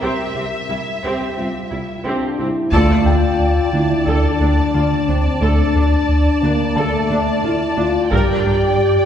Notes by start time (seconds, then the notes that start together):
Already playing: A#4 A#5
0.02 C2 C4 G4 E5
0.36 C2 C4 G4
0.69 C2 G3 E4
1.04 C2 C4 G4
1.37 C2 C4 F4 G4
1.71 C2 G3 E4
2.05 C2 C4 D4 G4
2.39 C2 C4 E4 G4
2.71 D2 F4 A4 D5 A5, taiko
3.05 D2 D4 G5
3.39 D2
3.73 D2 D3 D4 E4
4.07 D2 D4 A4
4.40 D2 D4
4.74 D2 D3 F4
5.08 D2 C4 D4
5.42 D2 D4 A4
5.76 D2 D4
6.09 D2
6.42 D2 D3 A#3 D4
6.76 D2 A3 A4 A5
7.10 D2 D4
7.43 D2 D3 E4 F4
7.78 D2 D4 F4
8.11 G2 G4 A#4 D5 G5, taiko
8.45 G2 D4
8.78 G2